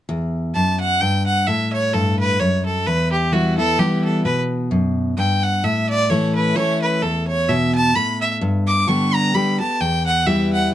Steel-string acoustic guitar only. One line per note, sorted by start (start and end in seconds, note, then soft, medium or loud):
0.09 0.55 E2 loud
0.55 0.99 F#2 medium
1.02 1.46 G2 medium
1.48 2.36 A2 medium
1.94 2.38 G2 medium
2.41 2.84 F#2 medium
2.87 3.75 E2 medium
3.32 3.57 E3 medium
3.32 3.57 G3 medium
3.32 3.57 B3 loud
3.32 3.56 E4 loud
3.58 3.79 B3 soft
3.58 3.78 E4 medium
3.78 4.23 E3 medium
3.78 4.23 G3 medium
3.78 4.24 B3 loud
3.78 4.24 E4 medium
4.25 5.13 B2 medium
4.71 5.15 F#2 medium
5.17 5.62 G2 medium
5.64 6.52 A2 loud
6.10 6.54 E3 medium
6.10 6.55 A3 medium
6.10 6.55 C#4 loud
6.10 6.55 E4 loud
6.56 7.00 E3 medium
6.56 7.01 A3 medium
6.56 7.01 C#4 loud
6.56 7.01 E4 medium
7.03 7.91 E2 medium
7.49 7.93 B2 loud
7.96 8.40 A2 medium
8.41 9.30 G2 loud
8.87 9.32 D3 medium
8.87 9.32 G3 loud
8.87 9.32 B3 medium
8.87 9.33 G4 medium
9.34 9.58 D3 medium
9.34 9.59 G3 loud
9.34 9.59 B3 medium
9.34 9.59 G4 medium
9.60 9.81 B3 soft
9.60 9.80 G4 medium
9.81 10.69 E2 medium
10.26 10.71 E3 medium
10.26 10.71 G3 loud
10.26 10.71 B3 medium
10.26 10.72 E4 medium